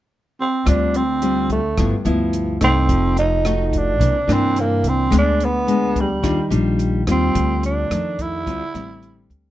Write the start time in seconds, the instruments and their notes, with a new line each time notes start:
0.41 tenor saxophone C4
0.65 upright bass D2, nylon-string guitar D3 G3 C4 F4, tenor saxophone D4, kick, cross-stick, closed hi-hat
0.94 tenor saxophone C4, closed hi-hat
1.22 nylon-string guitar G3 C4 F4, closed hi-hat
1.50 tenor saxophone A3, kick, closed hi-hat
1.77 upright bass G1, nylon-string guitar G2 F3 B3 E4, kick, cross-stick, closed hi-hat
2.05 upright bass D2, nylon-string guitar F3 B3 E4, closed hi-hat
2.33 closed hi-hat
2.61 upright bass C2, nylon-string guitar A3 D#4, tenor saxophone C4, cross-stick, closed hi-hat
2.89 upright bass F1, nylon-string guitar F3, kick, closed hi-hat
3.17 tenor saxophone D#4, closed hi-hat
3.45 nylon-string guitar A3 D#4 F#4, cross-stick, closed hi-hat
3.67 tenor saxophone D#4
3.73 kick, closed hi-hat
3.77 tenor saxophone D4
3.99 upright bass C2, nylon-string guitar C3 E3 A#3 D4, kick, closed hi-hat
4.28 upright bass G2, nylon-string guitar E3 A#3 D4, cross-stick, closed hi-hat
4.32 tenor saxophone C4
4.56 tenor saxophone A#3, closed hi-hat
4.84 upright bass C2, closed hi-hat
4.89 tenor saxophone C4
5.10 upright bass D2, nylon-string guitar D3 G#3 B3 D4, kick, cross-stick, closed hi-hat
5.18 tenor saxophone D4
5.40 closed hi-hat
5.45 tenor saxophone B3
5.67 nylon-string guitar G#3 B3 D4, closed hi-hat
5.96 kick, closed hi-hat
6.00 tenor saxophone G3
6.23 upright bass D#2, nylon-string guitar D#3 G3 D4 F4, kick, cross-stick, closed hi-hat
6.50 upright bass A#1, nylon-string guitar G3 D4 F4, closed hi-hat
6.79 closed hi-hat
7.07 upright bass D#2, nylon-string guitar G3 C4 F4, tenor saxophone C4, cross-stick, closed hi-hat
7.34 upright bass D2, nylon-string guitar D3, kick, closed hi-hat
7.63 tenor saxophone D4, closed hi-hat
7.90 upright bass F2, nylon-string guitar D#3 A3 D4, cross-stick, closed hi-hat
8.19 tenor saxophone E4, kick, closed hi-hat
8.46 upright bass D2, nylon-string guitar D3 G3 C4 F4, kick, closed hi-hat
8.75 upright bass A1, nylon-string guitar G3 C4, cross-stick, closed hi-hat
9.03 closed hi-hat
9.30 upright bass D2, kick, closed hi-hat